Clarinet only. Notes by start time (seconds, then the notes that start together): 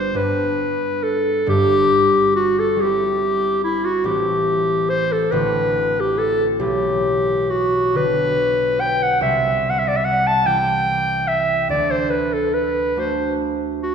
Already playing: C5
0.16 B4
1.03 A4
1.49 G4
2.36 F#4
2.59 A4
2.81 G4
3.64 E4
3.85 F#4
4.05 G4
4.90 C5
5.12 A4
5.31 B4
6.00 G4
6.18 A4
6.60 G4
7.50 F#4
7.96 B4
8.81 G5
9.03 F#5
9.22 E5
9.70 F#5
9.79 E5
9.88 D5
9.96 E5
10.04 F#5
10.27 A5
10.46 G5
11.28 E5
11.70 D5
11.91 C5
12.10 B4
12.33 A4
12.54 B4
12.99 C5
13.83 F#4